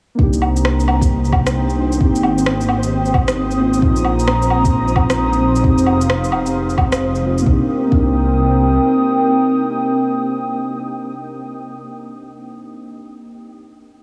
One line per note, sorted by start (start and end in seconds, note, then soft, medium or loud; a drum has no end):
0.15 1.99 C2 medium
0.15 1.74 A#3 medium
0.15 1.75 D4 medium
0.15 7.47 C5 medium
0.15 7.42 C5 medium
0.15 1.98 A#5 medium
0.15 7.42 D#6 medium
0.19 7.47 C4 medium
0.19 1.76 D#4 medium
0.19 1.78 G4 loud
0.19 3.79 G5 medium
0.19 kick loud
0.33 shaker soft
0.42 low woodblock soft
0.57 shaker medium
0.65 cross-stick loud
0.80 shaker soft
0.88 low woodblock medium
1.02 kick loud
1.02 shaker medium
1.25 shaker soft
1.32 kick loud
1.32 low woodblock medium
1.47 cross-stick medium
1.47 shaker medium
1.70 shaker soft
1.76 1.96 A#3 medium
1.76 1.98 D4 medium
1.76 1.99 D#4 medium
1.80 1.99 F4 medium
1.92 shaker medium
1.97 3.81 G#1 medium
1.97 3.56 A#3 loud
1.97 3.57 C4 medium
1.97 kick loud
2.02 3.58 D#4 medium
2.02 3.60 G4 loud
2.16 shaker soft
2.23 low woodblock medium
2.38 shaker medium
2.46 cross-stick loud
2.61 shaker soft
2.69 low woodblock medium
2.83 shaker medium
3.05 shaker soft
3.14 kick loud
3.14 low woodblock medium
3.28 cross-stick loud
3.28 shaker medium
3.51 shaker soft
3.58 3.79 A#3 medium
3.58 3.79 C4 medium
3.58 3.80 D#4 medium
3.58 3.81 F4 medium
3.74 shaker medium
3.78 5.37 G#3 medium
3.78 5.38 C4 medium
3.78 5.62 A#5 medium
3.82 5.62 A#1 medium
3.82 5.40 D#4 medium
3.82 5.41 F4 loud
3.82 kick loud
3.96 shaker soft
4.05 low woodblock soft
4.19 shaker medium
4.28 cross-stick loud
4.42 shaker soft
4.50 low woodblock medium
4.65 kick loud
4.65 shaker medium
4.88 shaker soft
4.96 kick loud
4.96 low woodblock medium
5.10 cross-stick loud
5.10 shaker medium
5.33 shaker soft
5.39 5.59 G#3 medium
5.39 5.61 C4 medium
5.39 5.62 D#4 medium
5.43 5.63 F4 medium
5.56 shaker medium
5.60 7.19 G#3 loud
5.60 7.20 C4 medium
5.60 7.44 F5 medium
5.64 7.44 F1 medium
5.64 7.22 D#4 medium
5.64 7.23 G4 loud
5.64 kick loud
5.78 shaker soft
5.86 low woodblock soft
6.01 shaker medium
6.10 cross-stick loud
6.24 shaker soft
6.32 low woodblock medium
6.46 shaker medium
6.70 shaker soft
6.78 kick loud
6.78 low woodblock medium
6.92 cross-stick loud
6.92 shaker medium
7.15 shaker soft
7.22 7.43 G#3 medium
7.22 7.44 C4 medium
7.22 7.44 D#4 medium
7.22 7.45 F4 medium
7.38 7.58 A#3 medium
7.38 shaker medium
7.45 7.61 C2 loud
7.45 11.86 C4 medium
7.45 7.60 D4 medium
7.45 7.62 D#4 medium
7.45 11.86 A#4 medium
7.45 11.86 G5 medium
7.45 11.86 D#6 medium
7.45 kick loud
7.53 7.65 G4 medium
7.86 12.25 A#3 medium
7.90 8.78 C2 medium
7.90 12.29 D4 medium
7.90 12.33 D#4 medium
7.90 kick loud
7.98 12.38 G4 medium